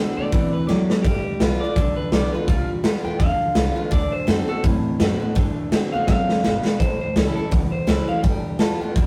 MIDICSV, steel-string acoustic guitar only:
0, 0, Header, 1, 2, 480
1, 0, Start_track
1, 0, Tempo, 360144
1, 1382, Time_signature, 4, 2, 24, 8
1, 12083, End_track
2, 0, Start_track
2, 0, Title_t, "Steel-string acoustic guitar"
2, 0, Program_c, 0, 25
2, 0, Note_on_c, 0, 50, 93
2, 0, Note_on_c, 0, 57, 86
2, 0, Note_on_c, 0, 60, 91
2, 0, Note_on_c, 0, 66, 96
2, 410, Note_off_c, 0, 50, 0
2, 413, Note_off_c, 0, 57, 0
2, 415, Note_off_c, 0, 60, 0
2, 421, Note_off_c, 0, 66, 0
2, 430, Note_on_c, 0, 52, 91
2, 886, Note_off_c, 0, 52, 0
2, 914, Note_on_c, 0, 54, 90
2, 1368, Note_off_c, 0, 54, 0
2, 1399, Note_on_c, 0, 55, 91
2, 1858, Note_off_c, 0, 55, 0
2, 1874, Note_on_c, 0, 55, 89
2, 1885, Note_on_c, 0, 59, 98
2, 1895, Note_on_c, 0, 65, 99
2, 2139, Note_off_c, 0, 55, 0
2, 2144, Note_off_c, 0, 59, 0
2, 2149, Note_off_c, 0, 65, 0
2, 2179, Note_on_c, 0, 65, 60
2, 2193, Note_on_c, 0, 59, 50
2, 2352, Note_off_c, 0, 65, 0
2, 2359, Note_off_c, 0, 59, 0
2, 2366, Note_on_c, 0, 50, 102
2, 2848, Note_on_c, 0, 55, 91
2, 2864, Note_on_c, 0, 59, 89
2, 2875, Note_on_c, 0, 65, 85
2, 3106, Note_off_c, 0, 55, 0
2, 3108, Note_off_c, 0, 65, 0
2, 3114, Note_off_c, 0, 59, 0
2, 3124, Note_on_c, 0, 65, 62
2, 3139, Note_on_c, 0, 59, 53
2, 3275, Note_off_c, 0, 50, 0
2, 3305, Note_off_c, 0, 65, 0
2, 3312, Note_off_c, 0, 59, 0
2, 3320, Note_on_c, 0, 55, 96
2, 3765, Note_off_c, 0, 55, 0
2, 3781, Note_on_c, 0, 55, 89
2, 3788, Note_on_c, 0, 59, 87
2, 3800, Note_on_c, 0, 65, 96
2, 4045, Note_off_c, 0, 65, 0
2, 4052, Note_off_c, 0, 55, 0
2, 4056, Note_off_c, 0, 59, 0
2, 4061, Note_on_c, 0, 65, 63
2, 4086, Note_on_c, 0, 59, 55
2, 4253, Note_off_c, 0, 65, 0
2, 4266, Note_off_c, 0, 59, 0
2, 4271, Note_on_c, 0, 50, 100
2, 4734, Note_on_c, 0, 55, 93
2, 4746, Note_on_c, 0, 59, 94
2, 4759, Note_on_c, 0, 65, 111
2, 4991, Note_off_c, 0, 65, 0
2, 5007, Note_on_c, 0, 65, 60
2, 5009, Note_off_c, 0, 55, 0
2, 5015, Note_off_c, 0, 59, 0
2, 5032, Note_on_c, 0, 59, 48
2, 5187, Note_off_c, 0, 50, 0
2, 5207, Note_off_c, 0, 65, 0
2, 5208, Note_on_c, 0, 50, 99
2, 5219, Note_off_c, 0, 59, 0
2, 5673, Note_off_c, 0, 50, 0
2, 5689, Note_on_c, 0, 50, 90
2, 5700, Note_on_c, 0, 57, 95
2, 5707, Note_on_c, 0, 60, 106
2, 5713, Note_on_c, 0, 66, 104
2, 5951, Note_off_c, 0, 66, 0
2, 5967, Note_off_c, 0, 50, 0
2, 5967, Note_on_c, 0, 66, 63
2, 5972, Note_off_c, 0, 57, 0
2, 5975, Note_off_c, 0, 60, 0
2, 5990, Note_on_c, 0, 60, 50
2, 6166, Note_off_c, 0, 66, 0
2, 6178, Note_off_c, 0, 60, 0
2, 6181, Note_on_c, 0, 45, 100
2, 6662, Note_on_c, 0, 50, 89
2, 6666, Note_on_c, 0, 57, 95
2, 6669, Note_on_c, 0, 60, 90
2, 6681, Note_on_c, 0, 66, 94
2, 6912, Note_off_c, 0, 66, 0
2, 6928, Note_on_c, 0, 66, 58
2, 6933, Note_off_c, 0, 50, 0
2, 6935, Note_off_c, 0, 57, 0
2, 6937, Note_off_c, 0, 60, 0
2, 6957, Note_on_c, 0, 60, 54
2, 7102, Note_off_c, 0, 45, 0
2, 7127, Note_off_c, 0, 66, 0
2, 7133, Note_on_c, 0, 50, 91
2, 7142, Note_off_c, 0, 60, 0
2, 7606, Note_off_c, 0, 50, 0
2, 7622, Note_on_c, 0, 50, 90
2, 7627, Note_on_c, 0, 57, 90
2, 7642, Note_on_c, 0, 60, 98
2, 7645, Note_on_c, 0, 66, 103
2, 7893, Note_off_c, 0, 50, 0
2, 7893, Note_off_c, 0, 66, 0
2, 7896, Note_off_c, 0, 57, 0
2, 7903, Note_off_c, 0, 60, 0
2, 7909, Note_on_c, 0, 66, 68
2, 7931, Note_on_c, 0, 60, 53
2, 8097, Note_off_c, 0, 66, 0
2, 8103, Note_on_c, 0, 42, 95
2, 8108, Note_off_c, 0, 60, 0
2, 8563, Note_off_c, 0, 42, 0
2, 8588, Note_on_c, 0, 47, 90
2, 9046, Note_off_c, 0, 47, 0
2, 9089, Note_on_c, 0, 45, 87
2, 9549, Note_on_c, 0, 52, 77
2, 9556, Note_on_c, 0, 55, 91
2, 9561, Note_on_c, 0, 61, 91
2, 9570, Note_on_c, 0, 64, 90
2, 9807, Note_off_c, 0, 64, 0
2, 9816, Note_off_c, 0, 52, 0
2, 9820, Note_off_c, 0, 55, 0
2, 9822, Note_off_c, 0, 61, 0
2, 9823, Note_on_c, 0, 64, 60
2, 9849, Note_on_c, 0, 61, 51
2, 9996, Note_off_c, 0, 45, 0
2, 10014, Note_off_c, 0, 64, 0
2, 10015, Note_on_c, 0, 40, 97
2, 10027, Note_off_c, 0, 61, 0
2, 10488, Note_on_c, 0, 52, 89
2, 10492, Note_on_c, 0, 55, 81
2, 10493, Note_on_c, 0, 61, 85
2, 10507, Note_on_c, 0, 64, 97
2, 10751, Note_off_c, 0, 64, 0
2, 10766, Note_off_c, 0, 52, 0
2, 10767, Note_on_c, 0, 64, 63
2, 10768, Note_off_c, 0, 55, 0
2, 10768, Note_off_c, 0, 61, 0
2, 10791, Note_on_c, 0, 61, 50
2, 10939, Note_off_c, 0, 40, 0
2, 10966, Note_off_c, 0, 64, 0
2, 10976, Note_on_c, 0, 55, 89
2, 10978, Note_off_c, 0, 61, 0
2, 11431, Note_off_c, 0, 55, 0
2, 11447, Note_on_c, 0, 55, 84
2, 11462, Note_on_c, 0, 59, 90
2, 11472, Note_on_c, 0, 65, 102
2, 11725, Note_off_c, 0, 55, 0
2, 11729, Note_off_c, 0, 65, 0
2, 11733, Note_off_c, 0, 59, 0
2, 11745, Note_on_c, 0, 65, 64
2, 11770, Note_on_c, 0, 59, 51
2, 11935, Note_off_c, 0, 65, 0
2, 11947, Note_off_c, 0, 59, 0
2, 11954, Note_on_c, 0, 47, 89
2, 12083, Note_off_c, 0, 47, 0
2, 12083, End_track
0, 0, End_of_file